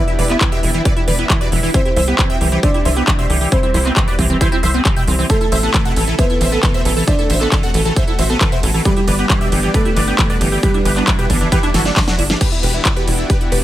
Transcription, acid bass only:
0.08 E4
0.19 E3
0.30 B3
0.41 E3
0.52 B2
0.63 E3
0.74 E3
0.85 E3
0.96 E4
1.08 E3
1.19 B3
1.30 E3
1.41 B2
1.52 E3
1.63 E3
1.74 E3
1.85 E4
1.96 E3
2.08 B3
2.19 E3
2.30 B2
2.41 E3
2.52 E3
2.63 E3
2.74 E4
2.85 E3
2.96 B3
3.08 E3
3.19 B2
3.30 E3
3.41 E3
3.52 E3
3.63 E4
3.74 E3
3.85 B3
3.96 E3
4.08 B2
4.19 E3
4.30 E3
4.41 E3
4.52 E4
4.63 E3
4.74 B3
4.85 E3
4.96 B2
5.08 E3
5.19 E3
5.30 E3
5.41 E4
5.52 E3
5.63 B3
5.74 E3
5.85 B2
5.96 E3
6.08 E3
6.19 E3
6.30 E4
6.41 E3
6.52 B3
6.63 E3
6.74 B2
6.85 E3
6.96 E3
7.08 E3
7.19 E4
7.30 E3
7.41 B3
7.52 E3
7.63 B2
7.74 E3
7.85 E3
7.96 E3
8.08 E4
8.19 E3
8.30 B3
8.41 E3
8.52 B2
8.63 E3
8.74 E3
8.85 E3
8.96 E4
9.08 E3
9.19 B3
9.30 E3
9.41 B2
9.52 E3
9.63 E3
9.74 E3
9.85 E4
9.96 E3
10.08 B3
10.19 E3
10.30 B2
10.41 E3
10.52 E3
10.63 E3
10.74 E4
10.85 E3
10.96 B3
11.08 E3
11.19 B2
11.30 E3
11.41 E3
11.52 E3
11.63 E4
11.74 E3
11.85 A3
11.96 E3
12.08 F#3
12.19 E4
12.30 E3

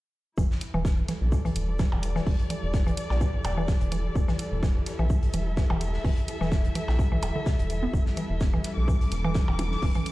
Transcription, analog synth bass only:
0.38 E1
0.74 E1
1.21 B1
1.56 E1
1.92 E1
2.27 E1
2.63 E1
3.10 B1
3.45 E1
3.81 E1
4.15 E1
4.52 E1
4.99 B1
5.34 E1
5.70 E1
6.04 E1
6.41 E1
6.88 B1
7.23 E1
7.59 E1
7.93 E1
8.30 E1
8.77 B1
9.12 E1
9.48 E1
9.82 E1

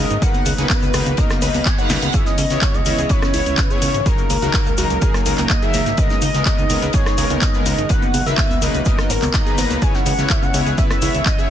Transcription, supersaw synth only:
0.22 C#3 A#3 D#4 B4
0.58 C#3 A#3 D#4 B4
0.94 C#3 A#3 D#4 B4
1.18 C#3 A#3 D#4 A#4
1.42 C#3 A#3 D#4 B4
1.78 C#3 A#3 D#4 B4
2.14 C#3 B3 E4 C#5
2.50 C#3 B3 E4 C#5
2.86 C#3 B3 E4 C#5
3.10 C#3 B3 E4 B4
3.34 C#3 B3 E4 C#5
3.70 C#3 B3 E4 C#5
4.06 C#3 F#3 D#4 A#4
4.42 C#3 F#3 D#4 A#4
4.78 C#3 F#3 D#4 A#4
5.02 C#3 F#3 D#4 G#4
5.26 C#3 F#3 D#4 A#4
5.62 C#3 F#3 D#4 A#4
5.98 C#3 G#3 B3 A#4
6.34 C#3 G#3 B3 A#4
6.70 C#3 G#3 B3 A#4
6.94 C#3 G#3 B3 G#4
7.18 C#3 G#3 B3 A#4
7.54 C#3 G#3 B3 A#4
7.90 C#3 A#3 D#4 B4
8.26 C#3 A#3 D#4 B4
8.62 C#3 A#3 D#4 B4
8.86 C#3 A#3 D#4 A#4
9.34 C#3 A#3 D#4 D#5
9.46 C#3 A#3 D#4 B4
9.58 A#3 D#4 B4
9.82 C#3 B3 E4 C#5
10.18 C#3 B3 E4 C#5
10.54 C#3 B3 E4 C#5
10.78 C#3 B3 E4 B4
11.02 C#3 B3 E4 C#5
11.38 C#3 B3 E4 C#5

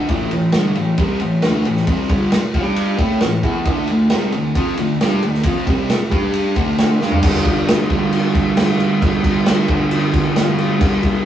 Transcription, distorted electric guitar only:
0.09 A2 E3 A3
0.33 A2 E3
0.54 G2 D3 G3
0.77 A2 E3
0.98 C3 G3 C4
1.22 A2 E3
1.43 D3 A3 D4
1.66 A2 E3
1.88 C3 G3 C4
2.09 G2 D3 G3
2.33 muted distorted electric guitar stroke
2.54 G3 D4 G4
2.98 A3 E4 A4
3.21 A2 E3
3.44 E3 B3 E4
3.66 D3 A3 D4
3.90 D3 A3
4.11 C3 G3 C4
4.33 D3 A3
4.55 F3 C4 F4
4.78 D3 A3
5.01 G3 D4 G4
5.23 D3 A3
5.46 F3 C4 F4
5.67 C3 G3 C4
5.89 muted distorted electric guitar stroke
6.10 G3 D4 G4
6.56 D3 A3 D4
7.01 G3 D4 G4
7.22 G2 D3 G3
7.90 G2 D3 G3
9.02 G2 D3 G3
9.68 G2 D3 G3
10.79 G2 D3 G3

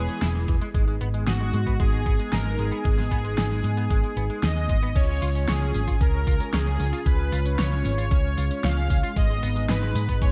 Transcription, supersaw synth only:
Already playing: G#4
1.28 F#4
1.80 G#4
2.32 A#4
2.59 G#4
4.44 D#5
4.96 C#5
5.49 G#4
6.01 A#4
6.54 G#4
7.07 B4
7.59 C#5
8.64 F5
9.17 D#5
9.69 B4
10.22 C#5

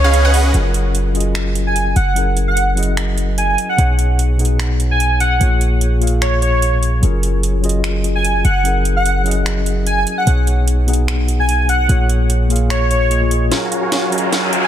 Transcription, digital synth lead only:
Already playing: C#5
1.67 G#5
1.96 F#5
2.48 F#5
3.38 G#5
3.49 G#5
3.69 F#5
4.91 G#5
5.21 F#5
6.22 C#5
6.42 C#5
8.15 G#5
8.45 F#5
8.96 F#5
9.87 G#5
9.98 G#5
10.18 F#5
11.40 G#5
11.69 F#5
12.70 C#5
12.91 C#5
14.64 G#5

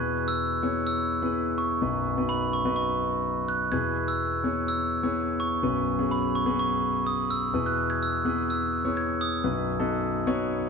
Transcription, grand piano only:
Already playing: E2 B2 B3 E4 G#4 B4
0.63 B3 E4 G#4 C#5
1.22 B3 E4 G#4 B4
1.82 B1 F#2 B3 D#4 F#4 B4
2.17 B3 D#4 F#4 B4
2.65 B3 D#4 F#4 B4
3.72 E2 B2 B3 E4 G#4 B4
4.44 B3 E4 G#4 C#5
5.03 B3 E4 G#4 C#5
5.63 B1 F#2 B3 C#4 F#4 B4
5.99 B3 C#4 F#4 G#4
6.46 B3 C#4 F#4 G#4
7.53 E2 B2 B3 E4 G#4 B4
8.25 B3 E4 G#4 B4
8.85 B3 E4 G#4 C#5
9.44 B1 F#2 B3 D#4 F#4 B4
9.80 B3 D#4 F#4 A4
10.27 B3 D#4 F#4 C#5

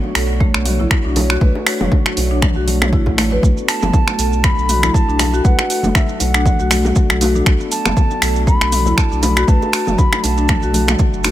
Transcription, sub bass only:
0.15 B1
0.55 B1
1.05 B1
1.41 B1
1.81 F#1
2.17 B1
2.56 B1
3.07 A1
3.43 B1
3.82 F#1
4.19 B1
4.58 B1
5.08 B1
5.45 B1
5.84 F#1
6.20 B1
6.60 B1
7.10 B1
7.46 B1
7.86 F#1
8.22 B1
8.61 B1
9.12 B1
9.48 B1
9.87 F#1
10.24 B1
10.63 B1
11.13 F#1

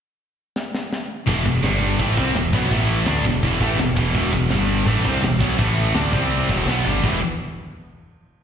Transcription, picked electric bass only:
1.27 E1
1.46 E1
1.63 G1
2.00 A1
2.17 C2
2.34 E1
2.53 B1
2.72 A1
3.06 D2
3.25 E1
3.44 E1
3.61 A1
3.78 E1
3.97 E1
4.15 E1
4.33 E1
4.51 G1
4.87 A1
5.05 C2
5.23 E1
5.41 B1
5.59 A1
5.95 D2
6.13 C2
6.50 E1
6.66 B1
6.86 G1
7.04 E1

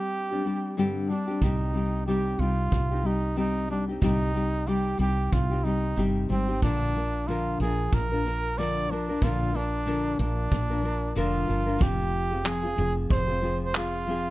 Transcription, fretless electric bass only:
1.42 C2
2.39 C2
2.72 C2
4.02 C2
4.99 C2
5.33 C2
5.97 G1
6.30 G#1
6.62 A#1
7.60 A#1
7.92 A#1
9.22 A#1
10.19 A#1
10.52 A#1
11.16 F1
11.49 G1
11.81 F1
12.78 F1
13.10 F1

